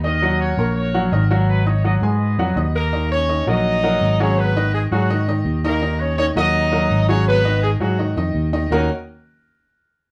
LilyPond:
<<
  \new Staff \with { instrumentName = "Trumpet section" } { \time 4/4 \key ees \minor \tempo 4 = 166 << { ees''4 des''4 des''4 bes'4 | ces''8 des''8 ees''8 ees''2 r8 | r1 | r1 |
r1 | r1 | r1 | } \\ { <ges' bes'>4 <ges' bes'>4 <ges' bes'>4 <des' ges'>4 | <ees' ges'>4. <ges' ces''>2 r8 | r1 | r1 |
r1 | r1 | r1 | } >> }
  \new Staff \with { instrumentName = "Grand piano" } { \time 4/4 \key ees \minor <ees ees' ees''>8 <ges ges' ges''>4 <bes bes' bes''>4 <ges ges' ges''>8 <ees ees' ees''>8 <ges ges' ges''>8~ | <ges ges' ges''>8 <ees' ees'' ees'''>8 <ges ges' ges''>8 <aes aes' aes''>4 <ges ges' ges''>8 <ees' ees'' ees'''>4 | <ees ees' ees''>4 <ees ees' ees''>8 <ges ges' bes'>4 <ges ges' bes'>4 <ges ges' aes'>8~ | <ges ges' aes'>8 <ees ees' ees''>4 <ges ges' aes'>8 <ees ees' ees''>8 <ees ees' ees''>4 <ees ees' ees''>8 |
<ees ees' ees''>4 <ees ees' ees''>8 <ges ges' bes'>4 <ges ges' bes'>4 <ges ges' aes'>8~ | <ges ges' aes'>8 <ees ees' ees''>4 <ges ges' aes'>8 <ees ees' ees''>8 <ees ees' ees''>4 <ees ees' ees''>8 | <ees bes des' ees' ges' bes'>8 r2. r8 | }
  \new Staff \with { instrumentName = "Horn section" } { \time 4/4 \key ees \minor r1 | r2. r8 <bes bes'>8~ | <bes bes'>8 <des' des''>4 <ees' ees''>2 <des' des''>8 | <ces' ces''>4 <aes aes'>8 <ges ges'>4 r4 <bes bes'>8~ |
<bes bes'>8 <des' des''>8 <des' des''>8 <ees' ees''>2 <des' des''>8 | <ces' ces''>4 <aes aes'>8 <ges ges'>4 r4. | ees'8 r2. r8 | }
  \new Staff \with { instrumentName = "Fingered electric bass" } { \clef bass \time 4/4 \key ees \minor ees,4. bes,,4. aes,,4~ | aes,,4. aes,4 f,8 ees,4~ | ees,4. bes,,4. aes,,4~ | aes,,4. aes,4. ees,4~ |
ees,4. ees,4. aes,,4~ | aes,,4. aes,4 f,8 ees,4 | ees,8 r2. r8 | }
>>